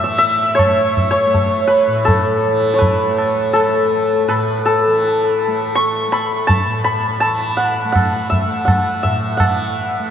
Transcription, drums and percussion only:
0.59 tabla na, tabla ge
0.97 tabla ge
1.34 tabla tin, tabla ge
2.08 tabla tin, tabla ge
2.82 tabla tin, tabla ge
3.19 tabla na
3.56 tabla na
4.29 tabla na
5.02 tabla tin
5.39 tabla na
5.76 tabla tin
6.13 tabla na
6.49 tabla tin, tabla ge
7.22 tabla na
7.96 tabla na, tabla ge
8.32 tabla ge
8.68 tabla na, tabla ge
9.04 tabla ge
9.40 tabla na, tabla ge

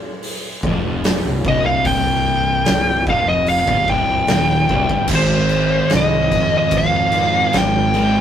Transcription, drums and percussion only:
0.23 open hi-hat
0.63 kick
1.04 snare, open hi-hat
1.45 kick
1.85 kick, open hi-hat
2.65 snare, open hi-hat
3.07 kick
3.46 open hi-hat
3.68 kick
3.88 kick
4.27 snare, open hi-hat
4.69 kick
4.89 kick
5.08 kick, crash
5.49 crash
5.90 snare, crash
6.31 kick, crash
6.71 kick, crash
7.12 crash
7.53 snare, crash
7.94 crash

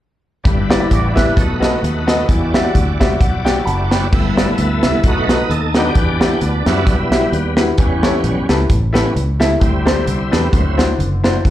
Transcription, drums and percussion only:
0.45 kick, closed hi-hat
0.70 snare, closed hi-hat
0.91 kick, closed hi-hat
1.17 kick, snare, closed hi-hat
1.37 kick, closed hi-hat
1.63 snare, closed hi-hat
1.84 closed hi-hat
2.08 snare, closed hi-hat
2.29 kick, closed hi-hat
2.54 snare, closed hi-hat
2.75 kick, closed hi-hat
3.01 kick, snare, closed hi-hat
3.21 kick, closed hi-hat
3.46 snare, closed hi-hat
3.67 closed hi-hat
3.91 snare, closed hi-hat
4.13 kick, crash
4.37 snare, closed hi-hat
4.58 closed hi-hat
4.83 snare, closed hi-hat
5.04 kick, closed hi-hat
5.29 snare, closed hi-hat
5.51 closed hi-hat
5.75 snare, closed hi-hat
5.95 kick, closed hi-hat
6.21 snare, closed hi-hat
6.41 closed hi-hat
6.66 snare, closed hi-hat
6.87 kick, closed hi-hat
7.12 snare, closed hi-hat
7.33 closed hi-hat
7.57 snare, closed hi-hat
7.78 kick, closed hi-hat
8.03 snare, closed hi-hat
8.24 closed hi-hat
8.49 snare, closed hi-hat
8.70 kick, closed hi-hat
8.95 snare, closed hi-hat
9.16 closed hi-hat
9.41 snare, closed hi-hat
9.61 kick, closed hi-hat
9.87 snare, closed hi-hat
10.07 closed hi-hat
10.33 snare, closed hi-hat
10.53 kick, closed hi-hat
10.79 snare, closed hi-hat
11.00 closed hi-hat
11.24 snare, closed hi-hat
11.45 kick, closed hi-hat

